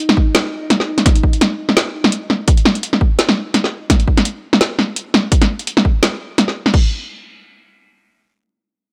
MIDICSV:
0, 0, Header, 1, 3, 480
1, 0, Start_track
1, 0, Tempo, 355030
1, 1428, Time_signature, 4, 2, 24, 8
1, 12069, End_track
2, 0, Start_track
2, 0, Title_t, "Synth texture"
2, 0, Program_c, 0, 99
2, 0, Note_on_c, 0, 63, 83
2, 5277, Note_off_c, 0, 63, 0
2, 12069, End_track
3, 0, Start_track
3, 0, Title_t, "Drums"
3, 122, Note_on_c, 9, 40, 71
3, 229, Note_on_c, 9, 36, 59
3, 257, Note_off_c, 9, 40, 0
3, 364, Note_off_c, 9, 36, 0
3, 469, Note_on_c, 9, 38, 115
3, 469, Note_on_c, 9, 40, 47
3, 469, Note_on_c, 9, 42, 76
3, 604, Note_off_c, 9, 38, 0
3, 604, Note_off_c, 9, 40, 0
3, 604, Note_off_c, 9, 42, 0
3, 950, Note_on_c, 9, 40, 71
3, 950, Note_on_c, 9, 42, 62
3, 1083, Note_on_c, 9, 38, 35
3, 1085, Note_off_c, 9, 40, 0
3, 1085, Note_off_c, 9, 42, 0
3, 1218, Note_off_c, 9, 38, 0
3, 1321, Note_on_c, 9, 40, 48
3, 1321, Note_on_c, 9, 42, 34
3, 1429, Note_on_c, 9, 36, 109
3, 1430, Note_off_c, 9, 40, 0
3, 1430, Note_off_c, 9, 42, 0
3, 1430, Note_on_c, 9, 40, 49
3, 1430, Note_on_c, 9, 42, 73
3, 1562, Note_off_c, 9, 42, 0
3, 1562, Note_on_c, 9, 42, 32
3, 1564, Note_off_c, 9, 36, 0
3, 1566, Note_off_c, 9, 40, 0
3, 1669, Note_on_c, 9, 36, 57
3, 1697, Note_off_c, 9, 42, 0
3, 1801, Note_on_c, 9, 42, 33
3, 1804, Note_off_c, 9, 36, 0
3, 1910, Note_off_c, 9, 42, 0
3, 1910, Note_on_c, 9, 40, 69
3, 1910, Note_on_c, 9, 42, 57
3, 2045, Note_off_c, 9, 40, 0
3, 2045, Note_off_c, 9, 42, 0
3, 2281, Note_on_c, 9, 40, 47
3, 2389, Note_on_c, 9, 38, 111
3, 2389, Note_on_c, 9, 42, 71
3, 2417, Note_off_c, 9, 40, 0
3, 2524, Note_off_c, 9, 38, 0
3, 2524, Note_off_c, 9, 42, 0
3, 2761, Note_on_c, 9, 40, 69
3, 2868, Note_on_c, 9, 42, 59
3, 2896, Note_off_c, 9, 40, 0
3, 3003, Note_off_c, 9, 42, 0
3, 3108, Note_on_c, 9, 40, 45
3, 3243, Note_off_c, 9, 40, 0
3, 3348, Note_on_c, 9, 42, 70
3, 3350, Note_on_c, 9, 36, 103
3, 3480, Note_off_c, 9, 42, 0
3, 3480, Note_on_c, 9, 42, 32
3, 3485, Note_off_c, 9, 36, 0
3, 3588, Note_on_c, 9, 40, 74
3, 3615, Note_off_c, 9, 42, 0
3, 3722, Note_on_c, 9, 42, 32
3, 3724, Note_off_c, 9, 40, 0
3, 3828, Note_off_c, 9, 42, 0
3, 3828, Note_on_c, 9, 42, 58
3, 3961, Note_on_c, 9, 40, 47
3, 3963, Note_off_c, 9, 42, 0
3, 4070, Note_on_c, 9, 36, 55
3, 4096, Note_off_c, 9, 40, 0
3, 4205, Note_off_c, 9, 36, 0
3, 4309, Note_on_c, 9, 38, 104
3, 4309, Note_on_c, 9, 42, 71
3, 4442, Note_on_c, 9, 40, 70
3, 4444, Note_off_c, 9, 38, 0
3, 4444, Note_off_c, 9, 42, 0
3, 4577, Note_off_c, 9, 40, 0
3, 4788, Note_on_c, 9, 40, 48
3, 4788, Note_on_c, 9, 42, 56
3, 4923, Note_on_c, 9, 38, 32
3, 4924, Note_off_c, 9, 40, 0
3, 4924, Note_off_c, 9, 42, 0
3, 5058, Note_off_c, 9, 38, 0
3, 5270, Note_on_c, 9, 36, 101
3, 5271, Note_on_c, 9, 40, 74
3, 5271, Note_on_c, 9, 42, 70
3, 5404, Note_off_c, 9, 42, 0
3, 5404, Note_on_c, 9, 42, 33
3, 5405, Note_off_c, 9, 36, 0
3, 5406, Note_off_c, 9, 40, 0
3, 5510, Note_on_c, 9, 36, 53
3, 5539, Note_off_c, 9, 42, 0
3, 5644, Note_on_c, 9, 40, 50
3, 5644, Note_on_c, 9, 42, 34
3, 5645, Note_off_c, 9, 36, 0
3, 5750, Note_off_c, 9, 42, 0
3, 5750, Note_on_c, 9, 42, 59
3, 5779, Note_off_c, 9, 40, 0
3, 5885, Note_off_c, 9, 42, 0
3, 6124, Note_on_c, 9, 40, 74
3, 6230, Note_on_c, 9, 38, 103
3, 6230, Note_on_c, 9, 42, 69
3, 6259, Note_off_c, 9, 40, 0
3, 6366, Note_off_c, 9, 38, 0
3, 6366, Note_off_c, 9, 42, 0
3, 6471, Note_on_c, 9, 40, 49
3, 6606, Note_off_c, 9, 40, 0
3, 6711, Note_on_c, 9, 42, 56
3, 6846, Note_off_c, 9, 42, 0
3, 6950, Note_on_c, 9, 40, 75
3, 7085, Note_off_c, 9, 40, 0
3, 7189, Note_on_c, 9, 36, 99
3, 7189, Note_on_c, 9, 42, 71
3, 7321, Note_off_c, 9, 42, 0
3, 7321, Note_on_c, 9, 40, 52
3, 7321, Note_on_c, 9, 42, 33
3, 7324, Note_off_c, 9, 36, 0
3, 7457, Note_off_c, 9, 40, 0
3, 7457, Note_off_c, 9, 42, 0
3, 7563, Note_on_c, 9, 42, 35
3, 7668, Note_off_c, 9, 42, 0
3, 7668, Note_on_c, 9, 42, 60
3, 7800, Note_on_c, 9, 40, 75
3, 7804, Note_off_c, 9, 42, 0
3, 7909, Note_on_c, 9, 36, 53
3, 7935, Note_off_c, 9, 40, 0
3, 8044, Note_off_c, 9, 36, 0
3, 8148, Note_on_c, 9, 38, 104
3, 8148, Note_on_c, 9, 40, 50
3, 8148, Note_on_c, 9, 42, 74
3, 8284, Note_off_c, 9, 38, 0
3, 8284, Note_off_c, 9, 40, 0
3, 8284, Note_off_c, 9, 42, 0
3, 8627, Note_on_c, 9, 40, 73
3, 8627, Note_on_c, 9, 42, 59
3, 8761, Note_on_c, 9, 38, 31
3, 8762, Note_off_c, 9, 40, 0
3, 8762, Note_off_c, 9, 42, 0
3, 8896, Note_off_c, 9, 38, 0
3, 9002, Note_on_c, 9, 40, 50
3, 9109, Note_on_c, 9, 36, 97
3, 9109, Note_on_c, 9, 49, 77
3, 9137, Note_off_c, 9, 40, 0
3, 9244, Note_off_c, 9, 36, 0
3, 9244, Note_off_c, 9, 49, 0
3, 12069, End_track
0, 0, End_of_file